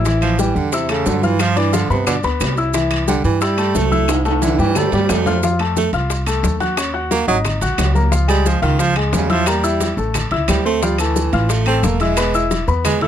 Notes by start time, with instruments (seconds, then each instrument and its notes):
Already playing: upright bass A1
0.05 grand piano E3 E4 E5, high bongo, high timbale, maracas
0.22 baritone saxophone F3, high bongo, high conga, high timbale, claves, maracas
0.39 baritone saxophone E3, grand piano G3 G4 G5, high bongo, high conga, maracas
0.55 upright bass E2, baritone saxophone D3, high conga, maracas
0.72 baritone saxophone C3, grand piano E4 E5 E6, high bongo, high conga, high timbale, maracas
0.89 baritone saxophone C#3, grand piano A3 A4 A5, high bongo, high conga, high timbale, claves, maracas
1.06 upright bass G2, baritone saxophone D3, high bongo, low bongo, high conga, low timbale, maracas
1.23 baritone saxophone E3, grand piano F4 F5 F6, high bongo, high conga, maracas
1.39 baritone saxophone F3, high bongo, high conga, high timbale, claves, maracas
1.56 baritone saxophone E3, grand piano D4 D5 D6, high bongo, high timbale, maracas
1.72 baritone saxophone D3, grand piano F3 F4 F5, high bongo, high conga, high timbale, maracas
1.90 upright bass G2, baritone saxophone C3, grand piano B3 B4 B5, maracas
2.07 baritone saxophone B2, grand piano D4 D5 D6, high bongo, high conga, low conga, high timbale, claves, maracas
2.23 upright bass D2, grand piano B3 B4 B5, high bongo, high conga, high timbale, maracas
2.41 upright bass C2, high bongo, low bongo, high conga, high timbale, low timbale, claves, maracas
2.57 grand piano E4 E5 E6, high bongo, maracas
2.74 grand piano E3 E4 E5, high bongo, high conga, high timbale, maracas
2.91 high bongo, high conga, high timbale, claves, maracas
3.07 baritone saxophone D3, grand piano G3 G4 G5, high bongo, high conga, maracas
3.24 upright bass G2, baritone saxophone E3, high conga, maracas
3.41 baritone saxophone G3, grand piano E4 E5 E6, high bongo, high conga, high timbale, maracas
3.58 grand piano A3 A4 A5, high bongo, high conga, high timbale, claves, maracas
3.75 upright bass C2, baritone saxophone A3, high bongo, low bongo, high conga, low timbale, maracas
3.91 grand piano E4 E5 E6, high bongo, high conga, maracas
4.08 high bongo, high timbale, claves, maracas
4.25 grand piano A3 A4 A5, high bongo, high conga, high timbale, maracas
4.42 baritone saxophone D3, grand piano E3 E4 E5, high bongo, high conga, high timbale, maracas
4.59 upright bass G2, baritone saxophone E3, grand piano G3 G4 G5, high conga, low timbale, maracas
4.75 baritone saxophone G3, grand piano A3 A4 A5, high bongo, high conga, low conga, low timbale, claves, maracas
4.92 upright bass G2, grand piano G3 G4 G5, low timbale, maracas
5.09 upright bass F2, baritone saxophone A3, low bongo, low timbale, claves, maracas
5.26 grand piano F4 F5 F6, low bongo, high conga, low timbale, maracas
5.43 grand piano F3 F4 F5, high bongo, maracas
5.59 grand piano A3 A4 A5, high bongo, high conga, high timbale, claves
5.77 baritone saxophone A3, high bongo, high conga, maracas
5.93 upright bass C2, baritone saxophone F3, grand piano F4 F5 F6, high bongo, high conga, high timbale, maracas
6.10 high bongo, high conga, high timbale, maracas
6.26 grand piano A3 A4 A5, high conga, high timbale, claves, maracas
6.43 upright bass D#2, high bongo, low bongo, high conga, maracas
6.60 grand piano F#4 F#5 F#6, high bongo, high conga, high timbale, maracas
6.77 grand piano C#4 C#5 C#6, high bongo, high conga, high timbale, claves, maracas
6.94 grand piano F#4 F#5 F#6, high conga
7.11 baritone saxophone A#3, high bongo, high conga, high timbale, maracas
7.28 upright bass G#1, baritone saxophone F#3, grand piano D#4 D#5 D#6, high bongo, maracas
7.45 high bongo, high conga, low conga, high timbale, claves, maracas
7.61 upright bass A#1, grand piano F#4 F#5 F#6, high bongo, high conga, low conga, high timbale, maracas
7.78 upright bass C#2, high bongo, low bongo, high conga, high timbale, low timbale, claves, maracas
7.95 grand piano A#3 A#4 A#5, high bongo, high conga, maracas
8.11 grand piano F3 F4 F5, high bongo, high conga, maracas
8.28 baritone saxophone G3, grand piano G#3 G#4 G#5, high bongo, high timbale, claves, maracas
8.46 baritone saxophone F3, high bongo, high conga, maracas
8.62 upright bass C#2, baritone saxophone D#3, grand piano F4 F5 F6, high bongo, high conga, high timbale, maracas
8.79 baritone saxophone F3, high bongo, high conga, high timbale, maracas
8.96 baritone saxophone G#2, grand piano G#3 G#4 G#5, high conga, high timbale, claves
9.13 upright bass E2, baritone saxophone C#3, high bongo, low bongo, high conga, low timbale, maracas
9.30 baritone saxophone F3, grand piano E4 E5 E6, high bongo, high conga, high timbale, maracas
9.46 baritone saxophone G3, grand piano A#3 A#4 A#5, high bongo, high conga, high timbale, claves, maracas
9.63 grand piano E4 E5 E6, high conga, maracas
9.80 high bongo, high conga, high timbale, maracas
9.97 upright bass A1, grand piano A3 A4 A5, high bongo, maracas
10.14 high bongo, high conga, low conga, high timbale, claves, maracas
10.31 upright bass C#2, grand piano E4 E5 E6, high bongo, high conga, low conga, high timbale
10.48 upright bass D2, baritone saxophone G3, high bongo, low bongo, high conga, high timbale, low timbale, claves, maracas
10.65 baritone saxophone A3, grand piano C4 C5 C6, high bongo, maracas
10.82 grand piano F3 F4 F5, baritone saxophone G3, high bongo, high conga, maracas
10.98 baritone saxophone E3, grand piano A3 A4 A5, high bongo, high conga, high timbale, claves, maracas
11.16 high bongo, high conga, maracas
11.33 upright bass A1, grand piano F4 F5 F6, high bongo, high conga, high timbale, maracas
11.49 baritone saxophone A3, high bongo, high conga, high timbale, maracas
11.66 grand piano A3 A4 A5, baritone saxophone C4, high conga, high timbale, claves
11.83 upright bass E1, baritone saxophone A#3, high bongo, low bongo, high conga, maracas
12.00 baritone saxophone G#3, grand piano E4 E5 E6, high bongo, high conga, high timbale, maracas
12.17 grand piano B3 B4 B5, high bongo, high timbale, claves, maracas
12.34 grand piano E4 E5 E6, high conga, maracas
12.51 high bongo, high conga, high timbale, maracas
12.68 upright bass E2, grand piano B3 B4 B5, high bongo, maracas
12.85 baritone saxophone G#3, high bongo, high conga, low conga, high timbale, claves, maracas
13.01 baritone saxophone A3, grand piano E4 E5 E6, high bongo, high conga, low conga, high timbale